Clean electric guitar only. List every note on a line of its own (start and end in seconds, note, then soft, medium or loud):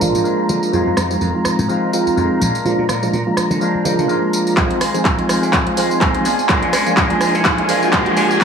0.00 0.24 F3 medium
0.00 0.25 G#3 medium
0.00 0.25 D4 medium
0.00 0.26 F4 medium
0.24 0.71 F3 medium
0.24 0.73 G#3 medium
0.24 0.74 D4 medium
0.24 0.75 F4 medium
0.72 1.67 D#3 medium
0.72 1.69 G#3 medium
0.72 1.69 C4 medium
0.76 1.71 F4 medium
1.68 2.15 D#3 medium
1.68 2.17 G#3 medium
1.68 2.17 C4 medium
1.68 2.19 F4 medium
2.16 2.41 D#3 medium
2.16 2.41 G#3 medium
2.16 2.41 C4 medium
2.16 2.39 F4 medium
2.40 3.61 G#3 medium
2.40 3.61 D4 medium
2.40 3.62 F4 medium
2.44 3.60 F3 medium
3.60 4.08 F3 medium
3.60 4.09 G#3 medium
3.60 4.09 D4 medium
3.60 4.11 F4 medium
4.08 4.56 F3 medium
4.08 4.57 G#3 medium
4.08 4.57 D4 medium
4.08 4.58 F4 medium
4.56 4.79 D#3 medium
4.56 4.80 G#3 loud
4.56 4.81 C4 loud
4.56 4.82 F4 loud
4.80 5.03 D#3 medium
4.80 5.04 G#3 medium
4.80 5.05 C4 medium
4.80 5.05 F4 medium
5.06 5.29 C4 medium
5.06 5.30 F4 loud
5.28 5.42 D#3 medium
5.28 5.43 G#3 medium
5.28 5.42 C4 medium
5.28 5.41 F4 medium
5.42 5.68 G#3 soft
5.42 5.66 C4 medium
5.42 5.65 F4 medium
5.66 5.76 G#3 soft
5.66 5.77 C4 medium
5.66 5.77 F4 medium
5.76 5.90 D#3 medium
5.76 5.91 G#3 medium
5.76 5.90 C4 medium
5.76 5.89 F4 medium
5.90 6.00 G#3 soft
5.90 6.01 C4 medium
5.90 6.01 F4 medium
6.01 6.25 D#3 medium
6.01 6.23 G#3 medium
6.01 6.25 C4 medium
6.01 6.26 F4 medium
6.24 6.48 G#3 medium
6.24 6.49 D4 medium
6.24 6.50 F4 medium
6.49 6.71 G#3 medium
6.49 6.73 D4 loud
6.49 6.74 F4 medium
6.72 6.95 G#3 medium
6.72 6.96 D4 medium
6.72 6.97 F4 medium
6.96 7.19 G#3 medium
6.96 7.21 D4 loud
6.96 7.22 F4 medium
7.20 7.34 G#3 medium
7.20 7.35 D4 medium
7.20 7.33 F4 medium
7.34 7.59 D4 medium
7.34 7.57 F4 medium
7.58 7.68 D4 medium
7.58 7.69 F4 medium
7.68 7.82 G#3 medium
7.68 7.83 D4 medium
7.68 7.80 F4 medium
7.82 7.92 D4 soft
7.82 7.93 F4 medium
7.92 8.15 G#3 medium
7.92 8.16 D4 loud
7.92 8.18 F4 loud
8.16 8.40 G#3 medium
8.16 8.41 D4 medium
8.16 8.41 F4 medium